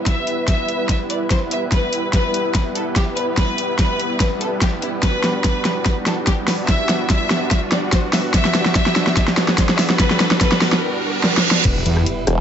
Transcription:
Already playing: G3 B3 E4 B4, riser
0.06 E5, kick, snare, closed hi-hat
0.27 closed hi-hat
0.48 E5, kick, snare, closed hi-hat
0.69 closed hi-hat
0.89 E5, kick, snare, closed hi-hat
1.10 D5, closed hi-hat
1.31 C5, kick, snare, closed hi-hat
1.51 E5, closed hi-hat
1.72 B4, kick, snare, closed hi-hat
1.93 closed hi-hat
2.13 B4, kick, snare, closed hi-hat
2.34 closed hi-hat
2.55 B4, kick, snare, closed hi-hat
2.75 A4, closed hi-hat
2.96 G4, kick, snare, closed hi-hat
3.17 B4, closed hi-hat
3.37 B4, kick, snare, closed hi-hat
3.58 closed hi-hat
3.79 B4, kick, snare, closed hi-hat
4.00 closed hi-hat
4.20 B4, kick, snare, closed hi-hat
4.41 A4, closed hi-hat
4.62 G4, kick, snare, closed hi-hat
4.82 E4, closed hi-hat
5.03 D4 F#4 B4, kick, snare, closed hi-hat
5.24 snare, closed hi-hat
5.44 B4, kick, snare, closed hi-hat
5.65 snare, closed hi-hat
5.86 B4, kick, snare, closed hi-hat
6.06 A4, snare, closed hi-hat
6.27 G4, kick, snare, closed hi-hat
6.48 B4, snare, open hi-hat
6.68 E5, kick, snare, closed hi-hat
6.89 snare, closed hi-hat
7.10 E5, kick, snare, closed hi-hat
7.31 snare, closed hi-hat
7.51 E5, kick, snare, closed hi-hat
7.72 D5, snare, closed hi-hat
7.93 C5, kick, snare, closed hi-hat
8.13 E5, snare, open hi-hat
8.34 E5, kick, snare, closed hi-hat
8.45 snare
8.55 snare, closed hi-hat
8.66 snare
8.75 E5, kick, snare, closed hi-hat
8.86 snare
8.96 snare, closed hi-hat
9.07 snare
9.17 E5, kick, snare, closed hi-hat
9.28 snare
9.37 D5, snare, closed hi-hat
9.48 snare
9.58 C5, kick, snare, closed hi-hat
9.69 snare
9.79 E5, snare, open hi-hat
9.90 snare
9.99 B4, kick, snare, closed hi-hat
10.11 snare
10.20 snare, closed hi-hat
10.31 snare
10.41 B4, kick, snare, closed hi-hat
10.52 snare
10.62 snare, open hi-hat
10.73 snare
10.82 reverse cymbal
11.24 snare
11.37 snare
11.51 snare
11.65 E1 G3 B3 E4 B4, kick, closed hi-hat, crash, impact
11.86 E2, closed hi-hat
11.97 cross-stick
12.06 closed hi-hat
12.27 E1, cross-stick, closed hi-hat

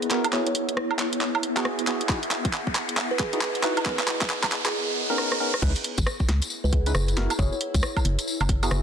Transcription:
Already playing: B3 E4 C#5 D#5, riser
0.02 closed hi-hat
0.11 B3 E4 F#4 A#4, clap, open hi-hat
0.24 closed hi-hat, high woodblock
0.33 B3 E4 F#4 G#4 C#5, clap
0.41 G#4
0.47 C#5, closed hi-hat
0.55 open hi-hat
0.69 closed hi-hat
0.77 cross-stick
0.91 E5, high woodblock
0.99 F#5, clap, open hi-hat
1.13 closed hi-hat
1.21 clap
1.35 high woodblock
1.43 open hi-hat
1.57 B3 E4 F#4 G#4, clap, closed hi-hat, high woodblock
1.65 cross-stick
1.79 closed hi-hat
1.87 B3 E4 F#4 G#4, clap, open hi-hat
2.01 closed hi-hat
2.09 D#4 E4 F#4 G#4, kick, clap
2.23 open hi-hat
2.31 clap, open hi-hat
2.45 D#5, kick, closed hi-hat
2.53 clap
2.67 kick
2.75 clap, open hi-hat
2.89 closed hi-hat
2.97 clap
3.11 B4
3.19 G#4, kick, clap, open hi-hat
3.33 D#4 E4 F#4 G#4, closed hi-hat
3.41 clap
3.55 closed hi-hat
3.63 D#4 E4 F#4 B4, clap, open hi-hat
3.77 B4, closed hi-hat, high woodblock
3.86 B3 C#4 D#4 A#4, kick, clap
3.99 clap, closed hi-hat
4.08 clap, open hi-hat
4.21 kick, clap, closed hi-hat
4.30 clap
4.43 kick, clap, high woodblock
4.52 clap, open hi-hat
4.65 G#4, clap, closed hi-hat
5.10 B3 C#4 D#4 A#4
5.18 cross-stick
5.32 cross-stick
5.40 B3 C#4 D#4 A#4
5.54 cross-stick
5.62 C#2 C#4 D#4 E4 B4, kick, tambourine, crash
5.75 open hi-hat, tambourine
5.81 E4, open hi-hat
5.98 G#1, kick, closed hi-hat, tambourine
6.06 cross-stick, tambourine
6.20 kick, tambourine
6.29 C#2, snare, open hi-hat
6.42 closed hi-hat, tambourine
6.50 tambourine
6.64 C#2 B4, tambourine
6.72 G#4, kick, open hi-hat
6.86 C#4 D#4 E4 G#4 B4, closed hi-hat, tambourine
6.95 F#1, cross-stick, tambourine
7.08 closed hi-hat, tambourine
7.17 B3 E4 F#4 A#4, snare, open hi-hat
7.30 closed hi-hat, tambourine, high woodblock
7.39 F#1 B3 E4 F#4 G#4 C#5, kick, tambourine
7.49 G#4 C#5, tambourine
7.61 open hi-hat
7.74 C#2, kick, closed hi-hat, tambourine
7.83 cross-stick, tambourine
7.97 kick, tambourine, high woodblock
8.02 F#1 E5, open hi-hat
8.06 F#5
8.19 closed hi-hat, tambourine
8.28 tambourine
8.40 F#1, tambourine, high woodblock
8.49 kick, open hi-hat
8.63 B3 E4 F#4 G#4, closed hi-hat, tambourine, high woodblock
8.71 F#1, cross-stick, tambourine

